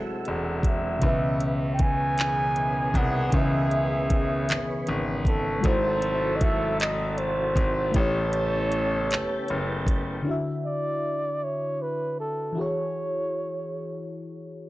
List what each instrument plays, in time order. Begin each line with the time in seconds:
Already playing: tonewheel organ C3 F#3 G#3 E4, horn section F#3 A3 E4 A4, fm electric piano G#3 E4 F#4 A4 C5 F#5
0.25 grand piano E1, closed hi-hat
0.63 flugelhorn E5, kick, closed hi-hat
0.99 grand piano C#2, fm electric piano B2 C#4, tonewheel organ B2 B3 C#4, kick, closed hi-hat
1.03 fm electric piano E3 B4
1.08 fm electric piano E5
1.41 closed hi-hat
1.74 flugelhorn G5
1.79 flugelhorn G#5, kick, closed hi-hat
2.18 horn section D#3 E3 G#3 G#4, clap, closed hi-hat
2.56 closed hi-hat
2.94 grand piano C2, flugelhorn F#5, kick, closed hi-hat
3.30 grand piano C#2, fm electric piano C#3 C#4, kick, closed hi-hat
3.34 fm electric piano E3 B4, flugelhorn E5
3.39 fm electric piano E5
3.71 closed hi-hat
4.10 kick, closed hi-hat
4.49 grand piano G#1, clap, closed hi-hat
4.87 grand piano G#1, closed hi-hat
5.25 flugelhorn A4, kick, closed hi-hat
5.60 tonewheel organ C3 F#3 E4 A4, horn section F#3 A3 E4 A4, fm electric piano G#3 F#4 A4, kick, closed hi-hat
5.65 grand piano G#1, fm electric piano E4 C5, flugelhorn C5
6.02 closed hi-hat
6.36 flugelhorn D#5
6.41 flugelhorn E5, kick, closed hi-hat
6.80 flugelhorn D#5, clap, closed hi-hat
7.18 flugelhorn C5, closed hi-hat
7.56 grand piano G#1, kick, closed hi-hat
7.92 tonewheel organ C#3 B3 G4, fm electric piano A3 E4, horn section A3 A4, kick, closed hi-hat
7.96 grand piano A1, horn section E3 C#4, fm electric piano G4 B4, flugelhorn C#5
8.00 fm electric piano C#5
8.33 closed hi-hat
8.72 closed hi-hat
9.11 grand piano F#1, clap, closed hi-hat
9.48 grand piano F#1, closed hi-hat
9.87 kick, closed hi-hat
10.23 fm electric piano D3 D4 E4
10.29 fm electric piano F#4 E5
10.65 flugelhorn D5
11.44 flugelhorn C#5
11.82 flugelhorn B4
12.20 flugelhorn A4
12.52 fm electric piano E3 E4
12.57 fm electric piano F#4 G#4, flugelhorn C#5
12.61 fm electric piano C#5